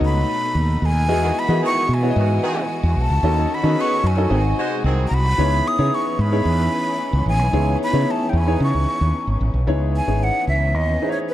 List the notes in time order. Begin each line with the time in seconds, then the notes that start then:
Already playing: B2 A3 B3 D#4 F#4 A4 C#5 D#5
0.01 C#2
0.05 B5
0.55 D#2
0.82 D#2 G#5
1.08 E2 E3 G#3 B3 E4 F#4 G#4 D#5
1.23 D#3 B3 F#4
1.39 B5
1.48 D#3 E3 B3 E4 F#4 G#4 D#5
1.62 D#3 B3 G#4 C#6
1.89 B2
1.94 G#5
2.02 B3 E4 F#4 G#4 C#5
2.10 D#5
2.16 G#2 D#3 B3 F#4
2.43 D#3 B3 G#4
2.83 E2
2.96 B1
3.01 A5
3.10 C#2
3.23 D#2 D#3 C#4 D#4 F#4 A4 D#5
3.38 F#3 D#4 A4
3.54 B5
3.63 D#3 B3 C#4 D#4 F#4 G#4 A4 B4 D#5
3.79 B3 G#4 B4 C#6
4.04 F#2 G#5
4.17 C#4 D#4 F#4 A4 D#5
4.30 G#1 C3 D#3 G#3 C4 D#4 F#4 G#4 D#5
4.58 G#3 F#4 C5
4.84 C2 D#3 C4 G#4
5.08 C2 A#5
5.14 B5
5.38 C#2 E3 B3 C#4 D#4 E4 G#4 C#5
5.68 D#6
5.78 C#3 B3 D#4 E4 G#4 C#5
5.94 C#6
6.19 G#2 B5
6.31 B3 D#4 E4 G#4 C#5
6.45 E2
7.13 C#2
7.26 A1 G#5
7.39 B1
7.53 C#2 B3 D#4 E4 G#4 C#5
7.84 B5
7.93 C#3 B3 D#4 E4 G#4 C#5
8.11 A5
8.29 E2 G5
8.38 G#5
8.46 B3 D#4 E4 G#4 C#5
8.60 C#3 C#6
8.74 C#2
9.01 D#2
9.27 G#1
9.41 A1
9.54 B1
9.67 C#2 E3 B3 C#4 D#4 E4 G#4 C#5
9.97 G#5
10.07 G#1 B3 D#4 E4 G#4 C#5
10.23 F#5
10.47 C#2 E5
10.74 D#2 D#5
11.02 B3 D#4 E4 G#4 C5
11.09 C#5
11.29 B4